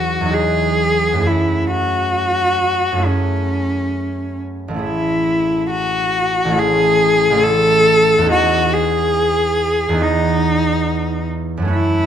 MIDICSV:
0, 0, Header, 1, 3, 480
1, 0, Start_track
1, 0, Key_signature, 4, "major"
1, 0, Tempo, 900901
1, 672, Time_signature, 4, 2, 24, 8
1, 1625, Tempo, 884956
1, 3545, Tempo, 859599
1, 5465, Tempo, 837989
1, 6629, End_track
2, 0, Start_track
2, 0, Title_t, "Cello"
2, 0, Program_c, 0, 42
2, 0, Note_on_c, 0, 66, 53
2, 179, Note_on_c, 0, 68, 63
2, 187, Note_off_c, 0, 66, 0
2, 675, Note_on_c, 0, 64, 50
2, 683, Note_off_c, 0, 68, 0
2, 909, Note_off_c, 0, 64, 0
2, 912, Note_on_c, 0, 66, 63
2, 1631, Note_on_c, 0, 61, 58
2, 1639, Note_off_c, 0, 66, 0
2, 2349, Note_off_c, 0, 61, 0
2, 2581, Note_on_c, 0, 64, 59
2, 3045, Note_off_c, 0, 64, 0
2, 3063, Note_on_c, 0, 66, 65
2, 3542, Note_on_c, 0, 68, 73
2, 3550, Note_off_c, 0, 66, 0
2, 4014, Note_on_c, 0, 69, 82
2, 4022, Note_off_c, 0, 68, 0
2, 4505, Note_off_c, 0, 69, 0
2, 4511, Note_on_c, 0, 66, 71
2, 4742, Note_on_c, 0, 68, 71
2, 4751, Note_off_c, 0, 66, 0
2, 5460, Note_on_c, 0, 63, 68
2, 5468, Note_off_c, 0, 68, 0
2, 6179, Note_off_c, 0, 63, 0
2, 6424, Note_on_c, 0, 64, 85
2, 6629, Note_off_c, 0, 64, 0
2, 6629, End_track
3, 0, Start_track
3, 0, Title_t, "Harp"
3, 0, Program_c, 1, 46
3, 0, Note_on_c, 1, 40, 28
3, 0, Note_on_c, 1, 54, 27
3, 0, Note_on_c, 1, 63, 25
3, 0, Note_on_c, 1, 66, 23
3, 0, Note_on_c, 1, 68, 25
3, 104, Note_off_c, 1, 40, 0
3, 111, Note_on_c, 1, 40, 38
3, 113, Note_off_c, 1, 54, 0
3, 120, Note_on_c, 1, 54, 31
3, 130, Note_off_c, 1, 63, 0
3, 136, Note_on_c, 1, 63, 31
3, 145, Note_off_c, 1, 66, 0
3, 151, Note_on_c, 1, 66, 31
3, 156, Note_off_c, 1, 68, 0
3, 163, Note_on_c, 1, 68, 29
3, 599, Note_on_c, 1, 42, 29
3, 610, Note_on_c, 1, 57, 23
3, 622, Note_on_c, 1, 61, 25
3, 640, Note_on_c, 1, 64, 25
3, 647, Note_off_c, 1, 68, 0
3, 653, Note_on_c, 1, 68, 25
3, 655, Note_off_c, 1, 40, 0
3, 668, Note_off_c, 1, 63, 0
3, 1549, Note_off_c, 1, 42, 0
3, 1556, Note_on_c, 1, 42, 32
3, 1561, Note_off_c, 1, 57, 0
3, 1567, Note_on_c, 1, 57, 28
3, 1576, Note_off_c, 1, 61, 0
3, 1583, Note_on_c, 1, 61, 29
3, 1588, Note_off_c, 1, 64, 0
3, 1595, Note_on_c, 1, 64, 31
3, 1604, Note_off_c, 1, 68, 0
3, 1610, Note_on_c, 1, 68, 30
3, 2208, Note_off_c, 1, 54, 0
3, 2240, Note_off_c, 1, 66, 0
3, 2510, Note_on_c, 1, 33, 35
3, 2516, Note_off_c, 1, 57, 0
3, 2523, Note_on_c, 1, 57, 26
3, 2535, Note_off_c, 1, 61, 0
3, 2541, Note_on_c, 1, 61, 27
3, 2546, Note_off_c, 1, 64, 0
3, 2553, Note_on_c, 1, 64, 26
3, 2562, Note_off_c, 1, 68, 0
3, 2568, Note_off_c, 1, 42, 0
3, 2568, Note_on_c, 1, 68, 28
3, 3462, Note_off_c, 1, 33, 0
3, 3468, Note_on_c, 1, 33, 42
3, 3477, Note_off_c, 1, 57, 0
3, 3484, Note_on_c, 1, 57, 33
3, 3491, Note_off_c, 1, 61, 0
3, 3498, Note_on_c, 1, 61, 36
3, 3505, Note_off_c, 1, 64, 0
3, 3511, Note_on_c, 1, 64, 32
3, 3520, Note_off_c, 1, 68, 0
3, 3527, Note_on_c, 1, 68, 33
3, 3935, Note_off_c, 1, 33, 0
3, 3941, Note_on_c, 1, 33, 48
3, 3949, Note_off_c, 1, 57, 0
3, 3956, Note_on_c, 1, 57, 41
3, 3965, Note_off_c, 1, 61, 0
3, 3972, Note_on_c, 1, 61, 39
3, 3980, Note_off_c, 1, 64, 0
3, 3987, Note_on_c, 1, 64, 37
3, 3995, Note_off_c, 1, 68, 0
3, 4002, Note_on_c, 1, 68, 38
3, 4434, Note_on_c, 1, 40, 42
3, 4449, Note_on_c, 1, 59, 32
3, 4465, Note_on_c, 1, 63, 33
3, 4470, Note_off_c, 1, 68, 0
3, 4477, Note_on_c, 1, 68, 29
3, 4488, Note_off_c, 1, 33, 0
3, 4495, Note_off_c, 1, 57, 0
3, 4503, Note_off_c, 1, 61, 0
3, 5381, Note_off_c, 1, 40, 0
3, 5387, Note_on_c, 1, 40, 51
3, 5398, Note_off_c, 1, 59, 0
3, 5404, Note_on_c, 1, 59, 39
3, 5413, Note_off_c, 1, 63, 0
3, 5420, Note_on_c, 1, 63, 36
3, 5426, Note_off_c, 1, 68, 0
3, 5433, Note_on_c, 1, 68, 41
3, 6182, Note_off_c, 1, 64, 0
3, 6350, Note_on_c, 1, 42, 42
3, 6363, Note_on_c, 1, 54, 31
3, 6377, Note_on_c, 1, 57, 36
3, 6394, Note_on_c, 1, 61, 35
3, 6403, Note_off_c, 1, 40, 0
3, 6406, Note_on_c, 1, 66, 37
3, 6412, Note_off_c, 1, 59, 0
3, 6420, Note_off_c, 1, 63, 0
3, 6427, Note_off_c, 1, 68, 0
3, 6629, Note_off_c, 1, 42, 0
3, 6629, Note_off_c, 1, 54, 0
3, 6629, Note_off_c, 1, 57, 0
3, 6629, Note_off_c, 1, 61, 0
3, 6629, Note_off_c, 1, 66, 0
3, 6629, End_track
0, 0, End_of_file